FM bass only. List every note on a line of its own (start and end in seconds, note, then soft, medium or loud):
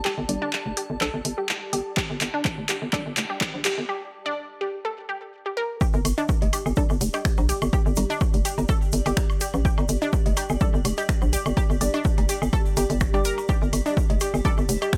0.18 0.25 G1 loud
0.29 0.37 G1 medium
0.66 0.73 F1 medium
0.90 0.97 G1 medium
1.01 1.09 A#1 loud
1.14 1.21 G1 medium
1.25 1.33 G1 loud
1.73 1.81 G1 medium
2.10 2.17 G1 loud
2.21 2.29 G1 medium
2.58 2.65 F1 medium
2.82 2.89 G1 medium
3.06 3.13 G1 loud
3.17 3.25 F1 medium
3.54 3.68 A#1 medium
3.78 3.85 G1 loud
5.94 6.01 G1 loud
6.05 6.13 G1 medium
6.42 6.49 F1 medium
6.66 6.73 G1 medium
6.90 6.97 G1 loud
7.01 7.09 F1 medium
7.38 7.52 A#1 loud
7.62 7.69 G1 loud
7.86 7.93 G1 loud
7.97 8.05 G1 medium
8.34 8.41 F1 medium
8.58 8.65 G1 medium
8.93 9.01 G1 medium
9.06 9.13 G1 loud
9.54 9.68 A1 medium
9.78 9.85 G1 loud
9.89 9.97 G1 medium
10.26 10.33 F1 medium
10.50 10.57 G1 medium
10.74 10.81 G1 loud
10.85 10.93 F1 medium
11.22 11.36 A#1 loud
11.46 11.53 G1 loud
11.70 11.77 G1 loud
11.81 11.89 G1 medium
12.18 12.25 F1 medium
12.42 12.49 G1 medium
12.77 12.85 G1 medium
12.90 13.27 G1 loud
13.25 13.33 F1 medium
13.62 13.69 G1 loud
13.73 13.81 G1 medium
14.10 14.17 F1 medium
14.34 14.41 G1 medium
14.58 14.65 G1 loud
14.69 14.77 F1 loud